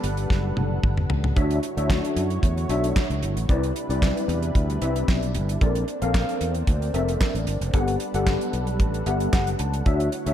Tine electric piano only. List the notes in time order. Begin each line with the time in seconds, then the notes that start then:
1.36 D4 F#4 C#5 E5
1.77 D4 F#4 C#5 E5
2.69 D4 F#4 C#5 E5
3.49 C4 E4 B4 D5
3.90 C4 E4 B4 D5
4.81 C4 E4 B4 E5
5.61 C4 A4 A#4 D5
6.02 C4 A4 A#4 F5
6.94 C4 A4 A#4 E5
7.73 B3 G4 A4 F#5
8.14 B3 G4 A4 F#5
9.06 B3 G4 A4 E5 F#5
9.34 F#5
9.60 A5
9.86 D4 F#4 C#5 E5
10.27 D4 F#4 C#5 E5